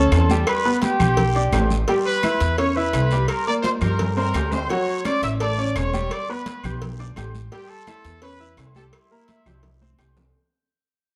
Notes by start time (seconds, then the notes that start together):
Already playing: C#4 A4 C#5 A5 C#6
0.12 E2, cowbell, high conga, low timbale, low agogo, short guiro, claves
0.29 G3 G4 G5, high conga, low agogo, short guiro
0.47 B4 B5, cowbell, high conga, low agogo, long guiro, claves
0.65 B3 B4 B5, high conga
0.82 G4 G5, cowbell, high conga, low timbale, low agogo, short guiro
1.00 B1 G4 G5 G6, high conga, low conga, low agogo, short guiro, claves
1.17 cowbell, high conga, low conga, long guiro
1.35 D4 D5 D6, high conga, low agogo
1.52 A1 G4 G5 G6, cowbell, high conga, low timbale, low agogo, short guiro, claves
1.70 high conga, short guiro
1.88 G3 G4 G5, cowbell, high conga, low agogo, long guiro
2.06 B4 B5, high conga, low agogo
2.23 E4 E5 E6, cowbell, high conga, low timbale, low agogo, short guiro, claves
2.40 E2, cowbell, short guiro
2.58 C#4 C#5 C#6, cowbell, high conga, low agogo, long guiro
2.76 E4 B4 E5 B5 E6, high conga
2.93 C2, cowbell, high conga, low timbale, low agogo, short guiro, claves
3.11 G3 G4 G5, low agogo, short guiro
3.28 A#4 A#5, cowbell, high conga, low agogo, long guiro, claves
3.47 A#3 A#4 D5 A#5 D6, high conga
3.63 C5 C6, cowbell, high conga, high timbale, low agogo, short guiro
3.81 G2 G4 A#4 G5 A#5 G6, high conga, low conga, high timbale, low agogo, short guiro, claves
3.99 cowbell, high conga, low conga, low timbale, long guiro
4.17 C4 A#4 C5 A#5 C6, high conga, low timbale, low agogo
4.34 D2 G4 G5 G6, cowbell, high conga, low timbale, low agogo, short guiro, claves
4.52 C5 C6, high conga, low timbale, short guiro
4.69 F#3 F#4 C#5 F#5 C#6, cowbell, high conga, low agogo, long guiro
4.88 high conga, low agogo
5.05 C#4 C#5 D5 C#6 D6, cowbell, high conga, low timbale, low agogo, short guiro, claves
5.22 A1 E5 E6, cowbell, high conga, short guiro
5.40 A3 A4 D5 A5 D6, cowbell, high conga, low agogo, long guiro
5.58 C#4 C#5 C#6, high conga
5.76 E1 C#5 C#6, cowbell, high conga, low timbale, low agogo, short guiro, claves
5.93 G3 G4 G5, high conga, low agogo, short guiro
6.11 D5 D6, cowbell, high conga, low agogo, long guiro, claves
6.29 B3 B4 B5, high conga
6.46 cowbell, high conga, low timbale, low agogo, short guiro
6.64 B1 G4 G5 G6, high conga, low conga, low agogo, short guiro, claves
6.82 cowbell, high conga, low conga, long guiro
6.99 D4 D5 D6, high conga, low agogo
7.16 A1 G4 G5 G6, cowbell, high conga, low timbale, low agogo, short guiro, claves
7.35 high conga, short guiro
7.52 G3 G4 G5, cowbell, low agogo, long guiro
7.69 A4 A5, high conga, low agogo
7.87 E4 E5 E6, cowbell, high conga, low timbale, low agogo, short guiro, claves
8.04 E2, cowbell, short guiro
8.22 C#4 B4 C#5 B5 C#6, cowbell, high conga, low agogo, long guiro
8.40 E4 E5 E6, high conga
8.57 C2, cowbell, high conga, low timbale, low agogo, short guiro, claves
8.75 G3 G4 A4 G5 A5, high conga, low agogo, short guiro
8.93 E4 E5, cowbell, high conga, low agogo, long guiro, claves
9.11 A#3 A#4 A#5, high conga
9.28 cowbell, high conga, low timbale, low agogo, short guiro
9.46 C2 G4 G5 G6, high conga, low conga, high timbale, low agogo, short guiro, claves
9.63 cowbell, high bongo, high conga, low conga, high timbale, long guiro
9.82 C4 C5 C6, high conga, low agogo
9.94 high conga
9.98 C2 G4 G5 G6, cowbell, low bongo, low timbale, low agogo, short guiro, claves
10.17 low bongo, low conga, low timbale, short guiro